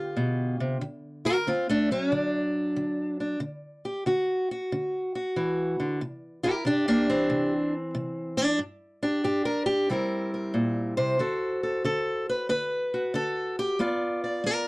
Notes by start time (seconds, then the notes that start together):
Already playing: G2 D3 B3 F4 G4
0.16 B2
0.60 C3
0.81 D3
1.25 F#4 A#4
1.47 D3 C4 F4
1.69 A3 D4
1.91 F#3 C#4
2.12 D3 D4
2.76 D3
3.20 D4
3.40 D3
3.85 G4
4.06 D3 F#4
4.51 F#4
4.72 D3
5.15 F#4
5.36 E3
5.80 D3
6.01 C3
6.43 E4 G4 A#4
6.65 C3 D4 G4
6.88 A#3 D4
7.10 E3 C4
7.30 C3
7.95 C3
8.37 D4
8.59 G2
9.03 D4 G4
9.24 G2 G4
9.45 A#4
9.66 G4
9.89 C3 G3 C4 E4 A#4
10.34 A#4
10.54 A#2
10.97 C3 C5
11.19 D3 F#4 A4
11.63 A4
11.84 D3 A4
12.29 B4
12.49 D3 B4
12.94 F#4
13.14 D3 A4
13.59 G4
13.79 G3 B3 F4 D5
14.24 D5
14.44 G3 A#4